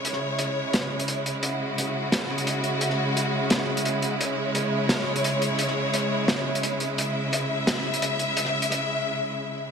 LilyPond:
<<
  \new Staff \with { instrumentName = "String section" } { \time 4/4 \key cis \minor \tempo 4 = 173 << { cis''1 | fis'1~ | fis'1 | cis''1~ |
cis''1 | e''1~ | e''1 | } \\ { <cis gis e'>1~ | <cis gis e'>1~ | <cis gis e'>1~ | <cis gis e'>1~ |
<cis gis e'>1~ | <cis gis e'>1~ | <cis gis e'>1 | } >> }
  \new DrumStaff \with { instrumentName = "Drums" } \drummode { \time 4/4 hh16 ss8. <hh ss>4 <hh sn>16 ss8 hh16 hh8 hh8 | hh4 <hh ss>4 <hh sn>8. hh16 hh8 hh8 | hh16 ss8. <hh ss>4 <hh sn>16 ss8 hh16 hh8 hh8 | hh4 <hh ss>4 <hh sn>8. hh16 hh8 hh8 |
hh16 ss8. <hh ss>4 <hh sn>16 ss8 hh16 hh8 hh8 | hh4 <hh ss>4 <hh sn>8. hh16 hh8 hh8 | hh16 ss8 hh16 <hh ss>4 r4 r4 | }
>>